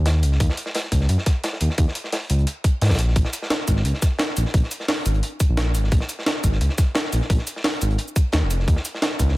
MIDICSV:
0, 0, Header, 1, 3, 480
1, 0, Start_track
1, 0, Key_signature, -5, "minor"
1, 0, Tempo, 344828
1, 561, Time_signature, 4, 2, 24, 8
1, 13047, End_track
2, 0, Start_track
2, 0, Title_t, "Analog synth bass"
2, 0, Program_c, 0, 38
2, 0, Note_on_c, 0, 39, 98
2, 320, Note_on_c, 0, 37, 84
2, 341, Note_off_c, 0, 39, 0
2, 537, Note_off_c, 0, 37, 0
2, 560, Note_on_c, 0, 39, 99
2, 672, Note_off_c, 0, 39, 0
2, 1280, Note_on_c, 0, 37, 99
2, 1497, Note_off_c, 0, 37, 0
2, 1520, Note_on_c, 0, 42, 80
2, 1632, Note_off_c, 0, 42, 0
2, 2241, Note_on_c, 0, 39, 95
2, 2352, Note_off_c, 0, 39, 0
2, 2479, Note_on_c, 0, 39, 100
2, 2592, Note_off_c, 0, 39, 0
2, 3200, Note_on_c, 0, 37, 100
2, 3417, Note_off_c, 0, 37, 0
2, 3919, Note_on_c, 0, 44, 102
2, 4043, Note_on_c, 0, 34, 84
2, 4064, Note_off_c, 0, 44, 0
2, 4381, Note_off_c, 0, 34, 0
2, 4398, Note_on_c, 0, 34, 98
2, 4511, Note_off_c, 0, 34, 0
2, 5119, Note_on_c, 0, 32, 97
2, 5337, Note_off_c, 0, 32, 0
2, 5359, Note_on_c, 0, 37, 77
2, 5471, Note_off_c, 0, 37, 0
2, 6080, Note_on_c, 0, 34, 94
2, 6192, Note_off_c, 0, 34, 0
2, 6320, Note_on_c, 0, 34, 97
2, 6432, Note_off_c, 0, 34, 0
2, 7039, Note_on_c, 0, 32, 98
2, 7257, Note_off_c, 0, 32, 0
2, 7644, Note_on_c, 0, 34, 99
2, 7998, Note_on_c, 0, 32, 83
2, 8019, Note_off_c, 0, 34, 0
2, 8216, Note_off_c, 0, 32, 0
2, 8240, Note_on_c, 0, 34, 102
2, 8352, Note_off_c, 0, 34, 0
2, 8960, Note_on_c, 0, 32, 98
2, 9177, Note_off_c, 0, 32, 0
2, 9202, Note_on_c, 0, 37, 78
2, 9313, Note_off_c, 0, 37, 0
2, 9921, Note_on_c, 0, 34, 98
2, 10033, Note_off_c, 0, 34, 0
2, 10160, Note_on_c, 0, 34, 97
2, 10272, Note_off_c, 0, 34, 0
2, 10881, Note_on_c, 0, 32, 100
2, 11097, Note_off_c, 0, 32, 0
2, 11601, Note_on_c, 0, 39, 105
2, 11723, Note_on_c, 0, 29, 82
2, 11744, Note_off_c, 0, 39, 0
2, 12061, Note_off_c, 0, 29, 0
2, 12078, Note_on_c, 0, 39, 101
2, 12191, Note_off_c, 0, 39, 0
2, 12799, Note_on_c, 0, 37, 100
2, 13017, Note_off_c, 0, 37, 0
2, 13047, End_track
3, 0, Start_track
3, 0, Title_t, "Drums"
3, 79, Note_on_c, 9, 42, 73
3, 80, Note_on_c, 9, 38, 113
3, 87, Note_off_c, 9, 42, 0
3, 87, Note_on_c, 9, 42, 80
3, 220, Note_off_c, 9, 38, 0
3, 226, Note_off_c, 9, 42, 0
3, 318, Note_on_c, 9, 42, 61
3, 319, Note_off_c, 9, 42, 0
3, 319, Note_on_c, 9, 42, 90
3, 447, Note_on_c, 9, 38, 37
3, 458, Note_off_c, 9, 42, 0
3, 556, Note_on_c, 9, 42, 90
3, 559, Note_off_c, 9, 42, 0
3, 559, Note_on_c, 9, 42, 77
3, 560, Note_on_c, 9, 36, 112
3, 586, Note_off_c, 9, 38, 0
3, 689, Note_on_c, 9, 38, 60
3, 698, Note_off_c, 9, 42, 0
3, 699, Note_off_c, 9, 36, 0
3, 798, Note_on_c, 9, 42, 91
3, 800, Note_off_c, 9, 42, 0
3, 800, Note_on_c, 9, 42, 67
3, 828, Note_off_c, 9, 38, 0
3, 916, Note_on_c, 9, 38, 56
3, 939, Note_off_c, 9, 42, 0
3, 1037, Note_on_c, 9, 42, 86
3, 1039, Note_off_c, 9, 42, 0
3, 1039, Note_on_c, 9, 42, 76
3, 1049, Note_off_c, 9, 38, 0
3, 1049, Note_on_c, 9, 38, 115
3, 1168, Note_off_c, 9, 38, 0
3, 1168, Note_on_c, 9, 38, 41
3, 1178, Note_off_c, 9, 42, 0
3, 1279, Note_on_c, 9, 42, 72
3, 1280, Note_on_c, 9, 36, 59
3, 1307, Note_off_c, 9, 38, 0
3, 1404, Note_on_c, 9, 38, 40
3, 1418, Note_off_c, 9, 42, 0
3, 1419, Note_off_c, 9, 36, 0
3, 1512, Note_on_c, 9, 42, 76
3, 1517, Note_off_c, 9, 42, 0
3, 1517, Note_on_c, 9, 42, 77
3, 1543, Note_off_c, 9, 38, 0
3, 1642, Note_on_c, 9, 38, 43
3, 1657, Note_off_c, 9, 42, 0
3, 1757, Note_on_c, 9, 42, 92
3, 1759, Note_off_c, 9, 38, 0
3, 1759, Note_off_c, 9, 42, 0
3, 1759, Note_on_c, 9, 36, 95
3, 1759, Note_on_c, 9, 38, 43
3, 1759, Note_on_c, 9, 42, 60
3, 1899, Note_off_c, 9, 36, 0
3, 1899, Note_off_c, 9, 38, 0
3, 1899, Note_off_c, 9, 42, 0
3, 1998, Note_on_c, 9, 42, 79
3, 2004, Note_on_c, 9, 38, 107
3, 2131, Note_off_c, 9, 38, 0
3, 2131, Note_on_c, 9, 38, 55
3, 2138, Note_off_c, 9, 42, 0
3, 2232, Note_on_c, 9, 42, 65
3, 2237, Note_off_c, 9, 42, 0
3, 2237, Note_on_c, 9, 42, 90
3, 2270, Note_off_c, 9, 38, 0
3, 2369, Note_on_c, 9, 38, 43
3, 2377, Note_off_c, 9, 42, 0
3, 2476, Note_on_c, 9, 42, 81
3, 2479, Note_on_c, 9, 36, 113
3, 2484, Note_off_c, 9, 42, 0
3, 2484, Note_on_c, 9, 42, 78
3, 2508, Note_off_c, 9, 38, 0
3, 2617, Note_on_c, 9, 38, 44
3, 2618, Note_off_c, 9, 36, 0
3, 2623, Note_off_c, 9, 42, 0
3, 2714, Note_on_c, 9, 42, 61
3, 2717, Note_off_c, 9, 42, 0
3, 2717, Note_on_c, 9, 42, 96
3, 2756, Note_off_c, 9, 38, 0
3, 2841, Note_on_c, 9, 38, 44
3, 2856, Note_off_c, 9, 42, 0
3, 2957, Note_on_c, 9, 42, 81
3, 2960, Note_off_c, 9, 38, 0
3, 2960, Note_on_c, 9, 38, 115
3, 2961, Note_on_c, 9, 46, 72
3, 3097, Note_off_c, 9, 42, 0
3, 3099, Note_off_c, 9, 38, 0
3, 3100, Note_off_c, 9, 46, 0
3, 3197, Note_on_c, 9, 42, 89
3, 3201, Note_off_c, 9, 42, 0
3, 3201, Note_on_c, 9, 42, 68
3, 3319, Note_off_c, 9, 42, 0
3, 3319, Note_on_c, 9, 42, 40
3, 3438, Note_off_c, 9, 42, 0
3, 3438, Note_on_c, 9, 42, 87
3, 3577, Note_off_c, 9, 42, 0
3, 3678, Note_on_c, 9, 42, 94
3, 3679, Note_on_c, 9, 36, 93
3, 3683, Note_off_c, 9, 42, 0
3, 3683, Note_on_c, 9, 42, 67
3, 3818, Note_off_c, 9, 36, 0
3, 3822, Note_off_c, 9, 42, 0
3, 3919, Note_on_c, 9, 42, 80
3, 3922, Note_off_c, 9, 42, 0
3, 3922, Note_on_c, 9, 42, 61
3, 3926, Note_on_c, 9, 38, 93
3, 3968, Note_off_c, 9, 42, 0
3, 3968, Note_on_c, 9, 42, 69
3, 3981, Note_off_c, 9, 38, 0
3, 3981, Note_on_c, 9, 38, 80
3, 4029, Note_off_c, 9, 38, 0
3, 4029, Note_on_c, 9, 38, 88
3, 4043, Note_on_c, 9, 36, 55
3, 4051, Note_off_c, 9, 42, 0
3, 4051, Note_on_c, 9, 42, 66
3, 4098, Note_off_c, 9, 42, 0
3, 4098, Note_on_c, 9, 42, 64
3, 4107, Note_off_c, 9, 38, 0
3, 4107, Note_on_c, 9, 38, 88
3, 4157, Note_off_c, 9, 42, 0
3, 4157, Note_on_c, 9, 42, 94
3, 4171, Note_off_c, 9, 42, 0
3, 4171, Note_on_c, 9, 42, 60
3, 4182, Note_off_c, 9, 36, 0
3, 4246, Note_off_c, 9, 38, 0
3, 4293, Note_on_c, 9, 38, 34
3, 4311, Note_off_c, 9, 42, 0
3, 4392, Note_on_c, 9, 42, 78
3, 4398, Note_off_c, 9, 42, 0
3, 4398, Note_on_c, 9, 42, 81
3, 4399, Note_on_c, 9, 36, 119
3, 4432, Note_off_c, 9, 38, 0
3, 4518, Note_on_c, 9, 38, 60
3, 4537, Note_off_c, 9, 42, 0
3, 4538, Note_off_c, 9, 36, 0
3, 4632, Note_on_c, 9, 42, 71
3, 4639, Note_off_c, 9, 42, 0
3, 4639, Note_on_c, 9, 42, 93
3, 4639, Note_on_c, 9, 82, 57
3, 4658, Note_off_c, 9, 38, 0
3, 4766, Note_on_c, 9, 38, 55
3, 4778, Note_off_c, 9, 42, 0
3, 4778, Note_off_c, 9, 82, 0
3, 4877, Note_off_c, 9, 38, 0
3, 4877, Note_on_c, 9, 38, 114
3, 4877, Note_on_c, 9, 42, 80
3, 4878, Note_off_c, 9, 38, 0
3, 4878, Note_off_c, 9, 42, 0
3, 4878, Note_on_c, 9, 38, 104
3, 4878, Note_on_c, 9, 42, 78
3, 5006, Note_off_c, 9, 38, 0
3, 5006, Note_on_c, 9, 38, 45
3, 5017, Note_off_c, 9, 42, 0
3, 5112, Note_on_c, 9, 42, 63
3, 5117, Note_off_c, 9, 42, 0
3, 5117, Note_on_c, 9, 42, 91
3, 5117, Note_on_c, 9, 82, 54
3, 5119, Note_on_c, 9, 36, 61
3, 5145, Note_off_c, 9, 38, 0
3, 5236, Note_on_c, 9, 38, 41
3, 5257, Note_off_c, 9, 42, 0
3, 5257, Note_off_c, 9, 82, 0
3, 5258, Note_off_c, 9, 36, 0
3, 5359, Note_on_c, 9, 42, 78
3, 5367, Note_off_c, 9, 42, 0
3, 5367, Note_on_c, 9, 42, 86
3, 5375, Note_off_c, 9, 38, 0
3, 5482, Note_on_c, 9, 38, 40
3, 5506, Note_off_c, 9, 42, 0
3, 5598, Note_on_c, 9, 42, 94
3, 5598, Note_on_c, 9, 82, 57
3, 5599, Note_on_c, 9, 36, 101
3, 5601, Note_off_c, 9, 42, 0
3, 5601, Note_on_c, 9, 42, 68
3, 5602, Note_off_c, 9, 38, 0
3, 5602, Note_on_c, 9, 38, 39
3, 5738, Note_off_c, 9, 82, 0
3, 5739, Note_off_c, 9, 36, 0
3, 5740, Note_off_c, 9, 42, 0
3, 5741, Note_off_c, 9, 38, 0
3, 5826, Note_on_c, 9, 38, 119
3, 5838, Note_off_c, 9, 38, 0
3, 5838, Note_on_c, 9, 38, 115
3, 5838, Note_on_c, 9, 42, 80
3, 5843, Note_off_c, 9, 42, 0
3, 5843, Note_on_c, 9, 42, 88
3, 5961, Note_off_c, 9, 38, 0
3, 5961, Note_on_c, 9, 38, 54
3, 5983, Note_off_c, 9, 42, 0
3, 6076, Note_on_c, 9, 42, 65
3, 6078, Note_off_c, 9, 42, 0
3, 6078, Note_on_c, 9, 42, 94
3, 6078, Note_on_c, 9, 82, 57
3, 6100, Note_off_c, 9, 38, 0
3, 6203, Note_on_c, 9, 38, 44
3, 6217, Note_off_c, 9, 42, 0
3, 6217, Note_off_c, 9, 82, 0
3, 6318, Note_on_c, 9, 42, 77
3, 6319, Note_on_c, 9, 36, 120
3, 6326, Note_off_c, 9, 42, 0
3, 6326, Note_on_c, 9, 42, 91
3, 6342, Note_off_c, 9, 38, 0
3, 6453, Note_on_c, 9, 38, 37
3, 6459, Note_off_c, 9, 36, 0
3, 6466, Note_off_c, 9, 42, 0
3, 6557, Note_on_c, 9, 42, 66
3, 6559, Note_off_c, 9, 42, 0
3, 6559, Note_on_c, 9, 42, 91
3, 6559, Note_on_c, 9, 82, 57
3, 6593, Note_off_c, 9, 38, 0
3, 6680, Note_on_c, 9, 38, 47
3, 6698, Note_off_c, 9, 42, 0
3, 6698, Note_off_c, 9, 82, 0
3, 6794, Note_on_c, 9, 46, 72
3, 6799, Note_off_c, 9, 38, 0
3, 6799, Note_on_c, 9, 38, 118
3, 6799, Note_on_c, 9, 42, 79
3, 6804, Note_off_c, 9, 38, 0
3, 6804, Note_on_c, 9, 38, 105
3, 6933, Note_off_c, 9, 46, 0
3, 6938, Note_off_c, 9, 42, 0
3, 6943, Note_off_c, 9, 38, 0
3, 7037, Note_on_c, 9, 42, 69
3, 7038, Note_off_c, 9, 42, 0
3, 7038, Note_on_c, 9, 42, 86
3, 7038, Note_on_c, 9, 82, 53
3, 7159, Note_off_c, 9, 42, 0
3, 7159, Note_on_c, 9, 42, 42
3, 7178, Note_off_c, 9, 82, 0
3, 7279, Note_off_c, 9, 42, 0
3, 7279, Note_on_c, 9, 42, 77
3, 7282, Note_off_c, 9, 42, 0
3, 7282, Note_on_c, 9, 42, 90
3, 7421, Note_off_c, 9, 42, 0
3, 7518, Note_on_c, 9, 42, 89
3, 7518, Note_on_c, 9, 82, 57
3, 7520, Note_on_c, 9, 36, 104
3, 7523, Note_off_c, 9, 42, 0
3, 7523, Note_on_c, 9, 42, 64
3, 7657, Note_off_c, 9, 82, 0
3, 7659, Note_off_c, 9, 36, 0
3, 7663, Note_off_c, 9, 42, 0
3, 7757, Note_on_c, 9, 38, 104
3, 7759, Note_off_c, 9, 38, 0
3, 7759, Note_on_c, 9, 38, 118
3, 7759, Note_on_c, 9, 42, 78
3, 7764, Note_off_c, 9, 42, 0
3, 7764, Note_on_c, 9, 42, 80
3, 7898, Note_off_c, 9, 38, 0
3, 7903, Note_off_c, 9, 42, 0
3, 7998, Note_on_c, 9, 42, 90
3, 7998, Note_on_c, 9, 82, 55
3, 8003, Note_off_c, 9, 42, 0
3, 8003, Note_on_c, 9, 42, 65
3, 8128, Note_on_c, 9, 38, 40
3, 8137, Note_off_c, 9, 82, 0
3, 8142, Note_off_c, 9, 42, 0
3, 8237, Note_on_c, 9, 42, 73
3, 8240, Note_on_c, 9, 36, 126
3, 8249, Note_off_c, 9, 42, 0
3, 8249, Note_on_c, 9, 42, 85
3, 8267, Note_off_c, 9, 38, 0
3, 8358, Note_on_c, 9, 38, 58
3, 8379, Note_off_c, 9, 36, 0
3, 8388, Note_off_c, 9, 42, 0
3, 8479, Note_on_c, 9, 42, 87
3, 8479, Note_on_c, 9, 82, 55
3, 8481, Note_off_c, 9, 42, 0
3, 8481, Note_on_c, 9, 42, 63
3, 8498, Note_off_c, 9, 38, 0
3, 8613, Note_on_c, 9, 38, 52
3, 8618, Note_off_c, 9, 82, 0
3, 8621, Note_off_c, 9, 42, 0
3, 8720, Note_off_c, 9, 38, 0
3, 8720, Note_on_c, 9, 38, 117
3, 8720, Note_on_c, 9, 42, 75
3, 8722, Note_off_c, 9, 38, 0
3, 8722, Note_on_c, 9, 38, 122
3, 8729, Note_off_c, 9, 42, 0
3, 8729, Note_on_c, 9, 42, 83
3, 8849, Note_off_c, 9, 38, 0
3, 8849, Note_on_c, 9, 38, 42
3, 8868, Note_off_c, 9, 42, 0
3, 8960, Note_on_c, 9, 36, 63
3, 8960, Note_on_c, 9, 42, 83
3, 8960, Note_on_c, 9, 82, 53
3, 8961, Note_off_c, 9, 42, 0
3, 8961, Note_on_c, 9, 42, 60
3, 8988, Note_off_c, 9, 38, 0
3, 9077, Note_on_c, 9, 38, 40
3, 9099, Note_off_c, 9, 36, 0
3, 9099, Note_off_c, 9, 82, 0
3, 9100, Note_off_c, 9, 42, 0
3, 9199, Note_on_c, 9, 42, 77
3, 9201, Note_off_c, 9, 42, 0
3, 9201, Note_on_c, 9, 42, 76
3, 9216, Note_off_c, 9, 38, 0
3, 9316, Note_on_c, 9, 38, 40
3, 9340, Note_off_c, 9, 42, 0
3, 9436, Note_on_c, 9, 42, 68
3, 9438, Note_off_c, 9, 38, 0
3, 9438, Note_on_c, 9, 38, 43
3, 9439, Note_off_c, 9, 42, 0
3, 9439, Note_on_c, 9, 42, 89
3, 9439, Note_on_c, 9, 82, 56
3, 9440, Note_on_c, 9, 36, 109
3, 9577, Note_off_c, 9, 38, 0
3, 9578, Note_off_c, 9, 42, 0
3, 9578, Note_off_c, 9, 82, 0
3, 9579, Note_off_c, 9, 36, 0
3, 9669, Note_on_c, 9, 38, 111
3, 9680, Note_off_c, 9, 38, 0
3, 9680, Note_on_c, 9, 38, 122
3, 9680, Note_on_c, 9, 42, 76
3, 9806, Note_off_c, 9, 38, 0
3, 9806, Note_on_c, 9, 38, 51
3, 9819, Note_off_c, 9, 42, 0
3, 9920, Note_on_c, 9, 42, 87
3, 9920, Note_on_c, 9, 82, 55
3, 9925, Note_off_c, 9, 42, 0
3, 9925, Note_on_c, 9, 42, 60
3, 9945, Note_off_c, 9, 38, 0
3, 10040, Note_on_c, 9, 38, 44
3, 10059, Note_off_c, 9, 82, 0
3, 10064, Note_off_c, 9, 42, 0
3, 10160, Note_on_c, 9, 36, 126
3, 10160, Note_on_c, 9, 42, 71
3, 10164, Note_off_c, 9, 42, 0
3, 10164, Note_on_c, 9, 42, 86
3, 10179, Note_off_c, 9, 38, 0
3, 10280, Note_on_c, 9, 38, 38
3, 10299, Note_off_c, 9, 36, 0
3, 10303, Note_off_c, 9, 42, 0
3, 10394, Note_on_c, 9, 42, 63
3, 10399, Note_off_c, 9, 42, 0
3, 10399, Note_on_c, 9, 42, 88
3, 10399, Note_on_c, 9, 82, 57
3, 10419, Note_off_c, 9, 38, 0
3, 10528, Note_on_c, 9, 38, 44
3, 10538, Note_off_c, 9, 42, 0
3, 10538, Note_off_c, 9, 82, 0
3, 10635, Note_on_c, 9, 46, 72
3, 10639, Note_off_c, 9, 38, 0
3, 10639, Note_on_c, 9, 38, 121
3, 10639, Note_on_c, 9, 42, 73
3, 10644, Note_off_c, 9, 38, 0
3, 10644, Note_on_c, 9, 38, 109
3, 10774, Note_off_c, 9, 46, 0
3, 10778, Note_off_c, 9, 42, 0
3, 10783, Note_off_c, 9, 38, 0
3, 10871, Note_on_c, 9, 42, 74
3, 10879, Note_off_c, 9, 42, 0
3, 10879, Note_on_c, 9, 42, 82
3, 10879, Note_on_c, 9, 82, 55
3, 11004, Note_off_c, 9, 42, 0
3, 11004, Note_on_c, 9, 42, 43
3, 11018, Note_off_c, 9, 82, 0
3, 11112, Note_off_c, 9, 42, 0
3, 11112, Note_on_c, 9, 42, 83
3, 11118, Note_off_c, 9, 42, 0
3, 11118, Note_on_c, 9, 42, 72
3, 11244, Note_on_c, 9, 82, 26
3, 11258, Note_off_c, 9, 42, 0
3, 11358, Note_on_c, 9, 42, 60
3, 11359, Note_on_c, 9, 36, 104
3, 11360, Note_off_c, 9, 42, 0
3, 11360, Note_off_c, 9, 82, 0
3, 11360, Note_on_c, 9, 42, 85
3, 11360, Note_on_c, 9, 82, 57
3, 11498, Note_off_c, 9, 36, 0
3, 11499, Note_off_c, 9, 42, 0
3, 11499, Note_off_c, 9, 82, 0
3, 11585, Note_on_c, 9, 42, 93
3, 11591, Note_on_c, 9, 38, 106
3, 11600, Note_off_c, 9, 38, 0
3, 11600, Note_off_c, 9, 42, 0
3, 11600, Note_on_c, 9, 38, 117
3, 11600, Note_on_c, 9, 42, 73
3, 11740, Note_off_c, 9, 38, 0
3, 11740, Note_off_c, 9, 42, 0
3, 11837, Note_on_c, 9, 42, 61
3, 11840, Note_off_c, 9, 42, 0
3, 11840, Note_on_c, 9, 42, 87
3, 11840, Note_on_c, 9, 82, 54
3, 11964, Note_on_c, 9, 38, 37
3, 11979, Note_off_c, 9, 42, 0
3, 11979, Note_off_c, 9, 82, 0
3, 12079, Note_on_c, 9, 36, 123
3, 12080, Note_on_c, 9, 42, 74
3, 12081, Note_off_c, 9, 42, 0
3, 12081, Note_on_c, 9, 42, 89
3, 12103, Note_off_c, 9, 38, 0
3, 12200, Note_on_c, 9, 38, 61
3, 12218, Note_off_c, 9, 36, 0
3, 12220, Note_off_c, 9, 42, 0
3, 12318, Note_on_c, 9, 42, 88
3, 12318, Note_on_c, 9, 82, 60
3, 12326, Note_off_c, 9, 42, 0
3, 12326, Note_on_c, 9, 42, 70
3, 12339, Note_off_c, 9, 38, 0
3, 12451, Note_on_c, 9, 38, 53
3, 12458, Note_off_c, 9, 82, 0
3, 12465, Note_off_c, 9, 42, 0
3, 12558, Note_off_c, 9, 38, 0
3, 12558, Note_on_c, 9, 38, 117
3, 12558, Note_on_c, 9, 42, 74
3, 12562, Note_off_c, 9, 42, 0
3, 12562, Note_on_c, 9, 42, 79
3, 12563, Note_off_c, 9, 38, 0
3, 12563, Note_on_c, 9, 38, 119
3, 12683, Note_off_c, 9, 38, 0
3, 12683, Note_on_c, 9, 38, 50
3, 12701, Note_off_c, 9, 42, 0
3, 12799, Note_on_c, 9, 36, 61
3, 12799, Note_on_c, 9, 42, 81
3, 12799, Note_on_c, 9, 82, 53
3, 12806, Note_off_c, 9, 42, 0
3, 12806, Note_on_c, 9, 42, 69
3, 12822, Note_off_c, 9, 38, 0
3, 12926, Note_on_c, 9, 38, 39
3, 12938, Note_off_c, 9, 36, 0
3, 12938, Note_off_c, 9, 82, 0
3, 12946, Note_off_c, 9, 42, 0
3, 13047, Note_off_c, 9, 38, 0
3, 13047, End_track
0, 0, End_of_file